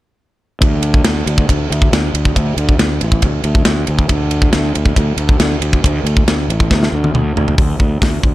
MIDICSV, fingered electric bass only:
0, 0, Header, 1, 2, 480
1, 0, Start_track
1, 0, Tempo, 435098
1, 674, Time_signature, 4, 2, 24, 8
1, 9205, End_track
2, 0, Start_track
2, 0, Title_t, "Fingered electric bass"
2, 0, Program_c, 0, 33
2, 671, Note_on_c, 0, 38, 97
2, 1112, Note_off_c, 0, 38, 0
2, 1161, Note_on_c, 0, 38, 94
2, 1377, Note_off_c, 0, 38, 0
2, 1393, Note_on_c, 0, 38, 93
2, 1613, Note_off_c, 0, 38, 0
2, 1646, Note_on_c, 0, 38, 88
2, 1860, Note_off_c, 0, 38, 0
2, 1879, Note_on_c, 0, 38, 90
2, 2096, Note_off_c, 0, 38, 0
2, 2121, Note_on_c, 0, 38, 96
2, 2337, Note_off_c, 0, 38, 0
2, 2358, Note_on_c, 0, 38, 87
2, 2575, Note_off_c, 0, 38, 0
2, 2606, Note_on_c, 0, 38, 98
2, 2819, Note_off_c, 0, 38, 0
2, 2831, Note_on_c, 0, 38, 92
2, 3051, Note_off_c, 0, 38, 0
2, 3071, Note_on_c, 0, 38, 94
2, 3291, Note_off_c, 0, 38, 0
2, 3320, Note_on_c, 0, 33, 87
2, 3536, Note_off_c, 0, 33, 0
2, 3560, Note_on_c, 0, 38, 91
2, 3776, Note_off_c, 0, 38, 0
2, 3791, Note_on_c, 0, 38, 90
2, 4011, Note_off_c, 0, 38, 0
2, 4036, Note_on_c, 0, 38, 98
2, 4253, Note_off_c, 0, 38, 0
2, 4282, Note_on_c, 0, 38, 97
2, 4496, Note_off_c, 0, 38, 0
2, 4521, Note_on_c, 0, 38, 97
2, 4955, Note_off_c, 0, 38, 0
2, 5011, Note_on_c, 0, 38, 95
2, 5221, Note_off_c, 0, 38, 0
2, 5246, Note_on_c, 0, 38, 94
2, 5458, Note_off_c, 0, 38, 0
2, 5478, Note_on_c, 0, 38, 90
2, 5694, Note_off_c, 0, 38, 0
2, 5699, Note_on_c, 0, 38, 88
2, 5924, Note_off_c, 0, 38, 0
2, 5952, Note_on_c, 0, 38, 99
2, 6170, Note_off_c, 0, 38, 0
2, 6179, Note_on_c, 0, 38, 94
2, 6403, Note_off_c, 0, 38, 0
2, 6444, Note_on_c, 0, 38, 95
2, 6652, Note_off_c, 0, 38, 0
2, 6658, Note_on_c, 0, 38, 85
2, 6883, Note_off_c, 0, 38, 0
2, 6913, Note_on_c, 0, 38, 92
2, 7131, Note_off_c, 0, 38, 0
2, 7153, Note_on_c, 0, 33, 91
2, 7371, Note_off_c, 0, 33, 0
2, 7399, Note_on_c, 0, 38, 87
2, 7615, Note_off_c, 0, 38, 0
2, 7636, Note_on_c, 0, 38, 88
2, 7853, Note_off_c, 0, 38, 0
2, 7875, Note_on_c, 0, 38, 96
2, 8093, Note_off_c, 0, 38, 0
2, 8118, Note_on_c, 0, 38, 94
2, 8335, Note_off_c, 0, 38, 0
2, 8364, Note_on_c, 0, 38, 92
2, 8549, Note_off_c, 0, 38, 0
2, 8593, Note_on_c, 0, 38, 79
2, 8782, Note_off_c, 0, 38, 0
2, 8850, Note_on_c, 0, 38, 89
2, 9033, Note_off_c, 0, 38, 0
2, 9090, Note_on_c, 0, 38, 88
2, 9205, Note_off_c, 0, 38, 0
2, 9205, End_track
0, 0, End_of_file